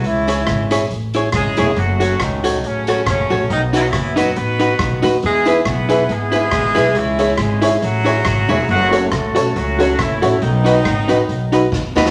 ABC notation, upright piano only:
X:1
M:4/4
L:1/8
Q:"Swing" 1/4=139
K:F#dor
V:1 name="Upright piano"
z8 | z8 | z8 | z [EGBe] z [EGBe] [Be] [EGBe] z [EGBe] |
z [EGce] [ce] [EGce] [ce] [EGce] z [EGce] | z [CFAc] z [CFAc] [Ac] [CFAc] z [CFAc] | z [DFBd] z [DFBd] [Bd] [DFBd] z [DFBd] |]